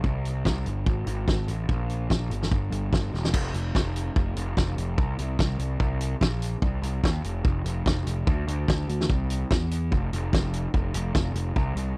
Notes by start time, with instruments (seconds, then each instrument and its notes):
0.04 picked electric bass C2, kick
0.25 closed hi-hat
0.45 picked electric bass C2, kick, snare
0.66 picked electric bass G1, closed hi-hat
0.86 picked electric bass G#1, kick
1.06 picked electric bass G#1, closed hi-hat
1.28 picked electric bass G#1, kick, snare
1.48 picked electric bass A1, closed hi-hat
1.69 picked electric bass A#1, kick
1.90 closed hi-hat
2.10 picked electric bass A#1, kick, snare
2.30 picked electric bass G1, closed hi-hat
2.42 snare
2.51 picked electric bass G1, kick
2.71 picked electric bass G1, closed hi-hat
2.92 picked electric bass G1, kick, snare
3.12 picked electric bass E1, snare
3.25 snare
3.34 picked electric bass F1, kick, crash
3.54 picked electric bass F1, closed hi-hat
3.75 picked electric bass F1, kick, snare
3.96 closed hi-hat
4.16 picked electric bass F1, kick
4.36 picked electric bass F1, closed hi-hat
4.57 picked electric bass F1, kick, snare
4.77 picked electric bass F1, closed hi-hat
4.98 picked electric bass C2, kick
5.19 picked electric bass C2, closed hi-hat
5.39 picked electric bass C2, kick, snare
5.58 picked electric bass C2, closed hi-hat
5.80 picked electric bass C2, kick
6.01 closed hi-hat
6.21 picked electric bass A#1, kick, snare
6.42 closed hi-hat
6.62 picked electric bass C2, kick
6.82 picked electric bass C2, closed hi-hat
7.03 picked electric bass D#2, kick, snare
7.24 picked electric bass F1, closed hi-hat
7.45 picked electric bass F1, kick
7.64 picked electric bass F1, closed hi-hat
7.86 picked electric bass F1, kick, snare
8.06 picked electric bass F1, closed hi-hat
8.27 picked electric bass D2, kick
8.47 picked electric bass D2, closed hi-hat
8.68 picked electric bass D2, kick, snare
8.89 picked electric bass D2, closed hi-hat
9.01 snare
9.09 picked electric bass C2, kick
9.30 closed hi-hat
9.51 picked electric bass E2, kick, snare
9.71 closed hi-hat
9.92 picked electric bass F1, kick
10.13 picked electric bass F1, closed hi-hat
10.33 picked electric bass F1, kick, snare
10.54 closed hi-hat
10.74 picked electric bass F1, kick
10.94 picked electric bass F1, closed hi-hat
11.15 picked electric bass F1, kick, snare
11.34 picked electric bass F1, closed hi-hat
11.56 picked electric bass C2, kick
11.75 picked electric bass C2, closed hi-hat